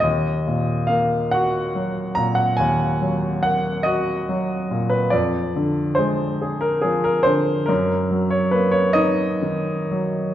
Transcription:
0.00 2.55 D#2 medium
0.00 0.89 D#5 medium
0.47 1.17 A#2 soft
0.87 1.58 A#3 soft
0.87 1.32 F5 medium
1.31 2.01 F#4 soft
1.31 2.17 F#5 medium
1.75 2.43 F#3 soft
2.15 2.85 A#2 soft
2.15 2.37 A#5 medium
2.35 2.58 F#5 medium
2.57 5.08 D#2 medium
2.57 3.43 G#5 medium
3.01 3.70 F#3 soft
3.43 4.12 A#3 soft
3.43 3.86 F#5 medium
3.83 4.53 F#4 soft
3.83 4.89 D#5 medium
4.29 4.95 F#3 soft
4.71 5.13 A#2 soft
4.90 5.11 B4 medium
5.10 7.66 F2 medium
5.10 5.96 D5 medium
5.56 6.24 D3 soft
5.95 6.67 G#3 soft
5.95 6.61 C5 medium
6.42 6.80 G#4 medium
6.61 6.83 A#4 medium
6.81 7.53 F3 soft
6.81 7.04 G#4 medium
7.04 7.26 A#4 medium
7.23 7.69 D3 soft
7.23 7.68 C5 medium
7.66 10.34 F#2 medium
7.66 8.31 A#4 medium
8.11 8.79 F#3 soft
8.30 8.53 C#5 medium
8.51 9.24 A#3 soft
8.51 8.74 B4 medium
8.71 8.95 C#5 medium
8.93 9.71 D#4 medium
8.93 10.34 D#5 medium
9.42 10.21 D#3 soft
9.91 10.34 F#3 soft

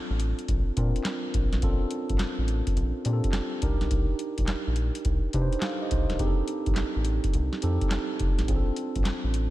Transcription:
0.00 0.21 C4 medium
0.00 0.21 D4 medium
0.00 0.21 F4 medium
0.00 0.22 A4 medium
0.10 0.33 A1 medium
0.20 closed hi-hat medium
0.39 closed hi-hat medium
0.48 0.64 A#1 loud
0.48 kick medium
0.48 closed hi-hat medium
0.77 0.92 A#2 loud
0.77 1.44 C4 medium
0.77 1.45 D4 medium
0.77 1.45 F4 medium
0.77 1.45 A#4 medium
0.77 kick medium
0.77 closed hi-hat medium
0.96 closed hi-hat medium
1.04 snare loud
1.04 clap medium
1.04 closed hi-hat medium
1.34 1.49 A#1 medium
1.34 kick medium
1.34 closed hi-hat medium
1.53 1.61 A1 medium
1.53 snare medium
1.53 closed hi-hat medium
1.62 1.78 A#1 loud
1.62 2.50 C4 medium
1.62 1.71 C#4 medium
1.62 2.50 F4 medium
1.62 2.50 A4 medium
1.62 kick loud
1.62 closed hi-hat medium
1.70 2.53 D4 medium
1.91 closed hi-hat medium
2.09 2.18 A1 medium
2.09 kick medium
2.09 closed hi-hat medium
2.19 2.27 A1 medium
2.19 snare loud
2.19 clap loud
2.19 closed hi-hat medium
2.38 2.62 A1 medium
2.48 closed hi-hat medium
2.67 kick medium
2.67 closed hi-hat medium
2.77 2.92 A#1 loud
2.77 closed hi-hat medium
3.05 3.21 A#2 loud
3.05 3.63 C4 medium
3.05 3.61 D4 medium
3.05 3.63 F4 medium
3.05 3.15 G4 medium
3.05 closed hi-hat medium
3.13 3.66 A4 medium
3.24 kick medium
3.24 closed hi-hat medium
3.32 snare loud
3.32 clap medium
3.32 closed hi-hat medium
3.62 3.78 C2 medium
3.62 4.56 D4 medium
3.62 4.56 D#4 medium
3.62 4.56 G4 medium
3.62 4.56 A#4 loud
3.62 kick medium
3.62 closed hi-hat medium
3.81 3.89 B1 medium
3.81 snare medium
3.81 closed hi-hat medium
3.91 4.06 C2 loud
3.91 kick loud
3.91 closed hi-hat medium
4.19 closed hi-hat medium
4.38 4.46 A#1 medium
4.38 kick medium
4.38 closed hi-hat medium
4.47 4.56 A#1 medium
4.47 snare loud
4.47 clap medium
4.47 closed hi-hat medium
4.67 4.90 A#1 medium
4.76 closed hi-hat medium
4.95 closed hi-hat medium
5.05 5.20 C2 medium
5.05 kick medium
5.05 closed hi-hat medium
5.33 5.49 C3 medium
5.33 5.63 D4 medium
5.33 5.63 D#4 medium
5.33 5.63 G4 medium
5.33 5.43 B4 medium
5.33 kick medium
5.33 closed hi-hat medium
5.42 5.66 C5 medium
5.52 closed hi-hat medium
5.61 5.81 A4 medium
5.61 5.81 F5 medium
5.61 snare loud
5.61 clap medium
5.61 closed hi-hat medium
5.82 5.91 G4 medium
5.82 5.91 D#5 medium
5.91 6.07 C2 medium
5.91 6.09 D#4 medium
5.91 6.09 C5 medium
5.91 kick medium
5.91 closed hi-hat medium
6.10 6.18 E1 medium
6.10 6.37 D4 medium
6.10 6.37 A#4 medium
6.10 snare medium
6.10 closed hi-hat medium
6.19 6.35 F1 loud
6.19 7.06 C4 medium
6.19 7.07 D#4 medium
6.19 7.07 G4 medium
6.19 6.29 G#4 medium
6.19 kick loud
6.19 closed hi-hat medium
6.27 7.10 A4 medium
6.48 closed hi-hat medium
6.66 6.75 A1 medium
6.66 kick medium
6.66 closed hi-hat medium
6.76 6.85 A1 medium
6.76 snare loud
6.76 clap loud
6.76 closed hi-hat medium
6.96 7.19 A1 medium
7.05 closed hi-hat medium
7.24 kick loud
7.24 closed hi-hat medium
7.34 7.49 C2 loud
7.34 closed hi-hat medium
7.53 snare medium
7.62 7.78 F2 loud
7.62 8.30 C4 medium
7.62 8.30 D#4 medium
7.62 8.30 G4 medium
7.62 8.31 A4 medium
7.62 closed hi-hat medium
7.81 kick medium
7.81 closed hi-hat medium
7.90 snare loud
7.90 clap medium
7.90 closed hi-hat medium
8.19 8.35 F1 medium
8.19 kick medium
8.19 closed hi-hat medium
8.39 8.47 A1 medium
8.39 snare medium
8.39 closed hi-hat medium
8.48 8.64 A#1 loud
8.48 9.35 C4 medium
8.48 9.35 D4 medium
8.48 9.36 F4 medium
8.48 8.57 G#4 medium
8.48 kick loud
8.48 closed hi-hat medium
8.56 9.39 A4 medium
8.76 closed hi-hat medium
8.96 9.04 A1 medium
8.96 kick medium
8.96 closed hi-hat medium
9.05 9.13 A1 soft
9.05 snare loud
9.05 clap medium
9.05 closed hi-hat medium
9.24 9.47 A1 medium
9.34 closed hi-hat medium

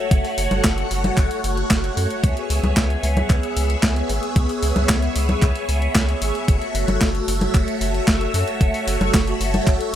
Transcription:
0.00 2.20 A3 medium
0.00 2.20 F#4 medium
0.00 6.45 C#5 medium
0.11 0.21 F#1 loud
0.11 2.22 F#5 medium
0.11 kick loud
0.11 closed hi-hat loud
0.25 open hi-hat medium
0.38 0.48 F#1 medium
0.38 open hi-hat loud
0.51 0.61 F#1 loud
0.51 closed hi-hat soft
0.51 high conga medium
0.64 0.84 F#1 loud
0.64 kick loud
0.64 snare loud
0.64 clap loud
0.64 closed hi-hat medium
0.78 closed hi-hat soft
0.91 1.10 F#1 loud
0.91 open hi-hat loud
1.04 closed hi-hat soft
1.04 high conga medium
1.17 1.27 F#1 medium
1.17 kick loud
1.17 clap medium
1.17 closed hi-hat medium
1.31 closed hi-hat soft
1.44 1.63 F#1 medium
1.44 open hi-hat loud
1.57 closed hi-hat soft
1.70 1.90 F#1 loud
1.70 kick loud
1.70 snare loud
1.70 clap medium
1.70 closed hi-hat loud
1.84 closed hi-hat soft
1.97 2.07 F#2 medium
1.97 open hi-hat loud
2.10 closed hi-hat soft
2.24 2.33 C#2 medium
2.24 6.44 B3 medium
2.24 6.44 G#4 medium
2.24 9.95 E5 medium
2.24 kick loud
2.24 closed hi-hat medium
2.37 closed hi-hat soft
2.50 2.60 C#2 medium
2.50 open hi-hat loud
2.63 2.73 C#2 loud
2.63 closed hi-hat soft
2.63 high conga medium
2.77 2.96 C#2 loud
2.77 kick loud
2.77 snare loud
2.77 clap medium
2.77 closed hi-hat medium
2.90 closed hi-hat soft
3.03 3.23 C#2 loud
3.03 open hi-hat loud
3.17 closed hi-hat soft
3.17 high conga medium
3.30 3.40 C#2 medium
3.30 kick loud
3.30 clap medium
3.30 closed hi-hat medium
3.43 closed hi-hat soft
3.57 3.76 C#2 medium
3.57 open hi-hat loud
3.70 closed hi-hat soft
3.83 4.02 C#2 loud
3.83 kick loud
3.83 snare loud
3.83 clap medium
3.83 closed hi-hat medium
3.96 closed hi-hat soft
4.10 4.19 G#1 medium
4.10 open hi-hat loud
4.23 closed hi-hat soft
4.36 4.46 C#2 loud
4.36 kick loud
4.36 closed hi-hat medium
4.49 open hi-hat medium
4.63 4.72 C#2 loud
4.63 open hi-hat loud
4.76 4.86 C#2 loud
4.76 closed hi-hat soft
4.76 high conga medium
4.89 5.09 C#2 loud
4.89 kick loud
4.89 snare loud
4.89 clap medium
4.89 closed hi-hat medium
5.02 closed hi-hat soft
5.16 5.35 C#2 loud
5.16 open hi-hat loud
5.29 closed hi-hat soft
5.29 high conga medium
5.42 5.52 C#2 medium
5.42 kick loud
5.42 clap soft
5.42 closed hi-hat medium
5.56 closed hi-hat soft
5.69 5.88 C#2 medium
5.69 open hi-hat loud
5.82 closed hi-hat soft
5.95 6.15 C#2 loud
5.95 kick loud
5.95 snare loud
5.95 clap medium
5.95 closed hi-hat medium
6.09 closed hi-hat soft
6.22 6.32 G#1 medium
6.22 open hi-hat loud
6.35 closed hi-hat soft
6.48 6.58 F#1 medium
6.48 9.95 A3 medium
6.48 9.95 F#4 medium
6.48 9.95 C#5 medium
6.48 kick loud
6.48 closed hi-hat medium
6.62 closed hi-hat soft
6.75 6.85 F#1 loud
6.75 open hi-hat loud
6.88 6.98 F#1 loud
6.88 closed hi-hat soft
6.88 high conga medium
7.01 7.21 F#1 loud
7.01 kick loud
7.01 snare loud
7.01 clap medium
7.01 closed hi-hat medium
7.15 closed hi-hat soft
7.28 7.47 F#1 loud
7.28 open hi-hat loud
7.41 closed hi-hat soft
7.41 high conga medium
7.54 7.64 F#1 medium
7.54 kick loud
7.54 clap soft
7.54 closed hi-hat medium
7.68 closed hi-hat soft
7.81 8.00 F#1 medium
7.81 open hi-hat loud
7.94 closed hi-hat soft
8.08 8.27 F#1 loud
8.08 kick loud
8.08 snare loud
8.08 clap medium
8.08 closed hi-hat medium
8.21 closed hi-hat soft
8.34 8.44 F#2 medium
8.34 open hi-hat loud
8.48 closed hi-hat soft
8.61 8.71 F#1 medium
8.61 kick loud
8.61 closed hi-hat medium
8.74 open hi-hat medium
8.87 8.97 F#1 medium
8.87 open hi-hat loud
9.01 9.10 F#1 loud
9.01 closed hi-hat soft
9.01 high conga medium
9.14 9.33 F#1 loud
9.14 kick loud
9.14 snare loud
9.14 clap medium
9.14 closed hi-hat medium
9.28 closed hi-hat soft
9.40 9.60 F#1 loud
9.40 open hi-hat loud
9.54 closed hi-hat soft
9.54 high conga medium
9.67 9.77 F#1 medium
9.67 kick loud
9.67 clap medium
9.67 closed hi-hat medium
9.81 closed hi-hat soft

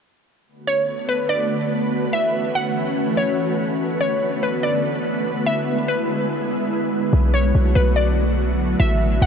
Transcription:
0.47 2.12 D3 medium
0.47 2.12 A3 medium
0.47 2.12 B3 medium
0.47 5.43 F#4 medium
0.47 3.77 B4 medium
0.67 1.06 C#5 medium
1.09 1.29 B4 medium
1.29 1.69 D5 medium
2.13 3.78 E3 medium
2.13 3.78 A3 medium
2.13 3.78 C#4 medium
2.13 2.52 E5 loud
2.55 3.14 F#5 medium
3.17 3.76 C#5 medium
3.80 7.10 D3 medium
3.80 5.45 A3 medium
3.80 7.10 B3 medium
3.80 7.10 B4 medium
4.01 4.40 C#5 medium
4.43 4.62 B4 medium
4.63 5.02 D5 medium
5.46 7.12 G#3 medium
5.46 7.12 E4 medium
5.46 5.86 E5 loud
5.88 7.09 B4 medium
7.13 7.53 B1 loud
7.13 8.78 D3 medium
7.13 9.26 F#3 medium
7.13 9.26 A3 medium
7.13 9.26 B3 medium
7.13 8.78 F#4 medium
7.34 7.73 C#5 medium
7.55 7.75 B1 loud
7.75 8.76 B1 loud
7.75 7.95 B4 medium
7.96 8.35 D5 medium
8.80 9.20 A1 loud
8.80 9.26 C#3 medium
8.80 9.26 E4 medium
8.80 9.19 E5 loud
9.22 9.26 A1 loud
9.22 9.26 F#5 medium

